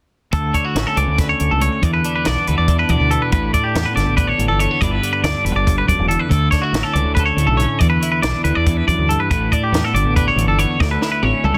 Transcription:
0.33 clean electric guitar D2 A4, fingered electric bass D2, kick, closed hi-hat
0.54 clean electric guitar D4 C#5, kick, closed hi-hat
0.65 clean electric guitar E4 F#4
0.75 fingered electric bass A1, clean electric guitar C#4, snare, closed hi-hat
0.87 clean electric guitar A4
0.96 fingered electric bass C#2, clean electric guitar D3 D5, closed hi-hat
1.08 fingered electric bass D2
1.18 clean electric guitar B4, kick, snare, closed hi-hat
1.29 clean electric guitar C#5
1.40 fingered electric bass D2, closed hi-hat
1.51 fingered electric bass C#2, clean electric guitar A4
1.60 clean electric guitar D2 C#5, closed hi-hat
1.82 clean electric guitar E2 D5, fingered electric bass E2, kick, closed hi-hat
1.94 clean electric guitar B4
2.04 clean electric guitar D4, closed hi-hat
2.15 clean electric guitar B4
2.25 fingered electric bass B1, clean electric guitar B3 D5, snare, closed hi-hat
2.47 fingered electric bass D2, clean electric guitar E3 B4, closed hi-hat
2.58 fingered electric bass E2, clean electric guitar D5
2.68 clean electric guitar D4, kick, closed hi-hat
2.79 clean electric guitar B4
2.89 fingered electric bass E2, clean electric guitar B2 D5, kick, closed hi-hat
3.00 fingered electric bass D2
3.11 clean electric guitar B3 A4, closed hi-hat
3.22 clean electric guitar B4
3.32 fingered electric bass A1, clean electric guitar A2 B4, kick, closed hi-hat
3.54 clean electric guitar D4 D5, kick, closed hi-hat
3.64 clean electric guitar G4
3.75 fingered electric bass E2, clean electric guitar B3, snare, closed hi-hat
3.85 clean electric guitar B4
3.95 fingered electric bass G1, clean electric guitar D3 D5, snare, closed hi-hat
4.06 fingered electric bass A1
4.17 clean electric guitar D4 B4, kick, closed hi-hat
4.27 clean electric guitar C#5
4.37 fingered electric bass A1, clean electric guitar E2, closed hi-hat
4.48 fingered electric bass G1, clean electric guitar A4
4.59 clean electric guitar A3 C#5, closed hi-hat
4.71 clean electric guitar B3
4.81 fingered electric bass G1, clean electric guitar G2 D3 B3 D4 E4 D5, kick, closed hi-hat
4.91 clean electric guitar B4
5.03 clean electric guitar D4, closed hi-hat
5.13 clean electric guitar B4
5.23 fingered electric bass D2, clean electric guitar D4 D5, snare, closed hi-hat
5.44 fingered electric bass E1, clean electric guitar D3 B4, closed hi-hat
5.55 fingered electric bass G1, clean electric guitar D5
5.67 clean electric guitar G2, kick, closed hi-hat
5.78 clean electric guitar B4
5.87 fingered electric bass G1, clean electric guitar F#2 D5, kick, closed hi-hat
5.99 fingered electric bass E1
6.08 clean electric guitar E2 A4, closed hi-hat
6.19 clean electric guitar B4
6.29 clean electric guitar D2 A4, fingered electric bass D2, kick, closed hi-hat
6.51 clean electric guitar D4 C#5, kick, snare, closed hi-hat
6.62 clean electric guitar E4 F#4
6.73 fingered electric bass A1, clean electric guitar C#4, snare, closed hi-hat
6.83 clean electric guitar A4
6.93 fingered electric bass C#2, clean electric guitar D3 D5, closed hi-hat
7.05 fingered electric bass D2
7.15 clean electric guitar B4, kick, closed hi-hat
7.20 clean electric guitar A4
7.26 clean electric guitar C#5
7.36 fingered electric bass D2, clean electric guitar A2, closed hi-hat
7.47 fingered electric bass B1, clean electric guitar A4
7.57 clean electric guitar C#5, closed hi-hat
7.62 clean electric guitar C#4
7.79 fingered electric bass E2, clean electric guitar E2 D5, kick, closed hi-hat
7.90 clean electric guitar B4
8.02 clean electric guitar E4, closed hi-hat
8.12 clean electric guitar B4
8.22 fingered electric bass B1, clean electric guitar D4 D5, snare, closed hi-hat
8.44 fingered electric bass D2, clean electric guitar E3 B4, closed hi-hat
8.55 fingered electric bass E2, clean electric guitar D5
8.66 clean electric guitar E2, kick, closed hi-hat
8.77 clean electric guitar B4
8.87 fingered electric bass E2, clean electric guitar F#2 D5, kick, closed hi-hat
8.98 fingered electric bass D2
9.09 clean electric guitar G2 A4, closed hi-hat
9.20 clean electric guitar B4
9.30 fingered electric bass A1, clean electric guitar A2 B4, kick, closed hi-hat
9.52 clean electric guitar D4 D5, kick, closed hi-hat
9.64 clean electric guitar G4
9.72 fingered electric bass E2, clean electric guitar B3, snare, closed hi-hat
9.84 clean electric guitar A4
9.94 fingered electric bass G1, clean electric guitar D3 D5, closed hi-hat
10.04 fingered electric bass A1
10.16 clean electric guitar D4 B4, kick, closed hi-hat
10.28 clean electric guitar C#5
10.36 fingered electric bass A1, clean electric guitar E2, closed hi-hat
10.47 fingered electric bass G1, clean electric guitar A4
10.59 clean electric guitar B3 C#5, closed hi-hat
10.79 clean electric guitar D2 D5, fingered electric bass D2, kick, snare
10.91 clean electric guitar B4
11.02 clean electric guitar E4, snare
11.12 clean electric guitar B4
11.23 fingered electric bass A1, clean electric guitar C#4 C#5, high tom
11.44 fingered electric bass C#2, clean electric guitar D3 A4, mid tom
11.53 fingered electric bass D2, clean electric guitar C#5, mid tom

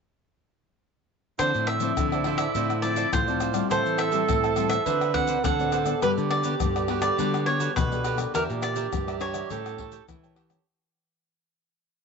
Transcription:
1.39 nylon-string guitar D3 F3 C4 E4, tenor saxophone E4, cavaquinho A4 C5 D5, pandeiro, tamborim, shaker, surdo
1.54 nylon-string guitar A2, pandeiro, shaker
1.67 cavaquinho E5, pandeiro, tamborim
1.80 nylon-string guitar F3 C4 E4, cavaquinho F4 A4 C5 D5, pandeiro, shaker
1.97 nylon-string guitar A2 D3, pandeiro, tamborim, shaker, surdo
2.12 cavaquinho A4 C5 D5, pandeiro, tamborim, shaker
2.24 nylon-string guitar F3 C4 E4, cavaquinho F4 A4 C5 D5, pandeiro, tamborim
2.38 cavaquinho A4 C5 D5 E5, pandeiro, tamborim, shaker
2.54 nylon-string guitar A2 D3 F3 C4 E4, cavaquinho F4 A4 C5 D5, pandeiro, shaker, surdo
2.70 pandeiro, tamborim, shaker
2.82 nylon-string guitar F3 C4 E4, cavaquinho F4 A4 C5 D5, pandeiro, shaker
2.96 cavaquinho F4 A4 C5 D5, pandeiro, shaker
3.12 nylon-string guitar A2, tenor saxophone F4, cavaquinho C5, pandeiro, tamborim, shaker, surdo
3.27 nylon-string guitar F3 C4 E4, cavaquinho A4 C5 D5, pandeiro, shaker
3.40 cavaquinho F4 A4 C5 D5, pandeiro, tamborim, shaker
3.53 nylon-string guitar G3 C4 E4, cavaquinho A4 C5 D5, pandeiro, tamborim, shaker
3.70 nylon-string guitar A2, cavaquinho G4 C5 E5 A5, tenor saxophone A4, pandeiro, tamborim, shaker, surdo
3.86 nylon-string guitar E3, pandeiro, shaker
3.98 cavaquinho E5, pandeiro, tamborim, shaker
4.11 nylon-string guitar G3 C4 E4, cavaquinho G4 C5 E5 A5, pandeiro, shaker
4.28 nylon-string guitar A2 E3, pandeiro, tamborim, shaker, surdo
4.43 cavaquinho C5 E5 A5, pandeiro, tamborim, shaker
4.56 nylon-string guitar G3 C4 E4, cavaquinho G4 C5 E5 A5, pandeiro, tamborim, shaker
4.69 cavaquinho C5 E5 A5, pandeiro, tamborim, shaker
4.86 nylon-string guitar D3 C4 F#4 B4, cavaquinho D4 C5 D5 F#5, tenor saxophone B4, pandeiro, shaker, surdo
5.01 pandeiro, tamborim, shaker
5.14 nylon-string guitar C4 F#4 B4, cavaquinho D4 C5 D5 F#5, pandeiro, surdo
5.27 cavaquinho D4 C5 D5 F#5, pandeiro, shaker
5.44 nylon-string guitar A2 D3, tenor saxophone A4, cavaquinho F#5, pandeiro, tamborim, shaker, surdo
5.59 nylon-string guitar C4 F#4 B4, cavaquinho C5 D5 F#5, pandeiro, shaker
5.72 cavaquinho D4 C5 D5 F#5, pandeiro, tamborim, shaker
5.85 nylon-string guitar B3 A4, cavaquinho C5 D5 F#5, pandeiro, tamborim, shaker
6.02 nylon-string guitar G2 G3, tenor saxophone G4, cavaquinho G4 B4 D5, pandeiro, tamborim, shaker, surdo
6.18 nylon-string guitar D3, pandeiro, shaker
6.30 cavaquinho D5, pandeiro, tamborim
6.44 nylon-string guitar B3 A4, cavaquinho F#4 G4 B4 D5, pandeiro, shaker
6.60 nylon-string guitar G2 D3, pandeiro, tamborim, shaker, surdo
6.76 cavaquinho G4 B4 D5, pandeiro, tamborim, shaker
6.88 nylon-string guitar B3 F#4 A4, cavaquinho F#4 G4 B4 D5, pandeiro, tamborim
7.02 cavaquinho G4 B4 D5, pandeiro, tamborim, shaker
7.18 nylon-string guitar D3 G3 B3 F#4 A4, cavaquinho F#4 G4 B4 D5, pandeiro, shaker, surdo
7.34 pandeiro, tamborim, shaker
7.46 nylon-string guitar B3 A4, cavaquinho F#4 G4 B4 C#5 D5, pandeiro
7.60 cavaquinho F#4 G4 B4 D5, pandeiro, shaker
7.76 nylon-string guitar B2 D3, cavaquinho B4, pandeiro, tamborim, shaker, surdo
7.92 nylon-string guitar B3 F#4 A4, cavaquinho G4 B4 D5, pandeiro, shaker
8.04 cavaquinho F#4 G4 B4 D5, pandeiro, tamborim, shaker
8.17 nylon-string guitar D4 G4 A#4, cavaquinho G4 B4 D5, pandeiro, tamborim, shaker
8.34 nylon-string guitar E2 E3, cavaquinho G4 A#4 D5 E5, tenor saxophone G4, pandeiro, tamborim, shaker, surdo
8.50 nylon-string guitar A#2, pandeiro, shaker
8.62 cavaquinho D5, pandeiro, tamborim, shaker
8.75 nylon-string guitar D4 G4 A#4, cavaquinho G4 A#4 D5 E5, pandeiro, shaker
8.92 nylon-string guitar G2 E3, pandeiro, tamborim, shaker, surdo
9.07 cavaquinho A#4 D5 E5, pandeiro, tamborim, shaker
9.20 nylon-string guitar D4 G4 A#4, cavaquinho G4 A#4 C#5 D5 E5, pandeiro, tamborim, shaker
9.33 cavaquinho A#4 D5 E5, pandeiro, tamborim, shaker
9.50 nylon-string guitar A2 A3 C#4 G4 A#4, cavaquinho G4 A4 C#5 G5, tenor saxophone A4, pandeiro, shaker, surdo
9.66 pandeiro, tamborim, shaker
9.78 nylon-string guitar C#4 G4 A#4, cavaquinho G4 A4 C#5 G5, pandeiro, surdo
9.92 cavaquinho G4 A4 C#5 G5, pandeiro, shaker
10.08 nylon-string guitar E3, tenor saxophone E4, pandeiro, tamborim, shaker, surdo
10.23 nylon-string guitar C#4 G4 A#4, cavaquinho A4 C#5 G5, pandeiro, shaker
10.36 tenor saxophone G4, cavaquinho G4 A4 C#5 G5, pandeiro, tamborim
10.49 nylon-string guitar C#4 G4 A#4, cavaquinho A4 C#5 G5, pandeiro, tamborim, shaker

